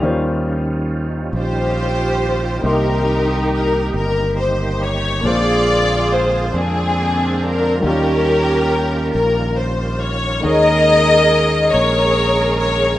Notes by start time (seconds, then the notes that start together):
Already playing: D#4
0.00 D#2 D#3 G3 C#4 D#4 F4
0.04 D#3 G3 C#4 F4 C5
1.33 A#1 F4 G4
1.37 C5
2.61 C2 C3 A#3 D#4 G4
2.65 D#4 A#4 C6
3.54 A#4
3.94 G1 A#4
4.40 C5
4.84 C#5
5.21 A#1 A#2 A#3 D4 G#4
5.25 D3 G#3 C4 F4 G#4 C5 D5
6.12 C5
6.54 F2 C4 D4 G#4
7.43 A#4
7.80 D#3 F#3 D#4 F4
7.84 D#2 D#3 G3 C#4 F4 G4 A#4
9.14 A#1 A#4
9.57 C5
10.01 C#5
10.41 D#2 D#3 A#3 D#4 G#4 A#4
10.45 D#3 G#3 G#4 C#5 D#5
11.72 A#1 G#4 A#4 C#5
12.59 C#5